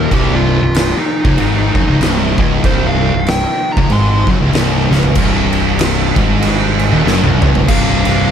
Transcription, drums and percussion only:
0.11 kick medium
0.11 crash medium
0.75 snare loud
0.75 crash medium
1.25 kick loud
1.38 crash medium
1.75 kick loud
2.01 snare loud
2.01 crash medium
2.38 kick loud
2.64 kick loud
2.64 crash medium
3.27 snare loud
3.27 crash medium
3.77 kick loud
3.90 crash medium
4.27 kick loud
4.53 snare loud
4.53 crash medium
4.92 snare medium
5.03 floor tom medium
5.15 kick loud
5.15 crash loud
5.15 crash medium
5.53 crash medium
5.79 snare loud
5.79 crash loud
6.16 kick loud
6.16 crash medium
6.42 crash medium
6.79 crash medium
7.07 snare medium
7.24 high tom medium
7.42 mid tom loud
7.55 floor tom loud
7.68 kick loud
7.68 crash loud
7.68 crash medium
8.05 crash medium

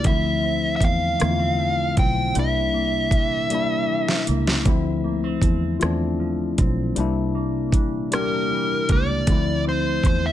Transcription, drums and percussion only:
0.04 kick loud
0.04 closed hi-hat medium
0.81 kick medium
0.81 closed hi-hat medium
1.20 cross-stick medium
1.20 closed hi-hat medium
1.97 kick medium
1.97 closed hi-hat medium
2.35 closed hi-hat medium
3.11 kick medium
3.11 closed hi-hat medium
3.50 closed hi-hat medium
4.08 snare medium
4.27 closed hi-hat medium
4.47 snare medium
4.66 kick loud
4.66 closed hi-hat medium
5.42 kick medium
5.42 closed hi-hat medium
5.81 cross-stick medium
5.81 closed hi-hat medium
6.58 kick medium
6.58 closed hi-hat medium
6.96 closed hi-hat medium
7.72 kick medium
7.72 closed hi-hat medium
8.12 cross-stick loud
8.12 closed hi-hat medium
8.89 kick medium
8.89 closed hi-hat medium
9.27 kick loud
9.27 closed hi-hat medium
10.03 kick medium
10.03 closed hi-hat medium

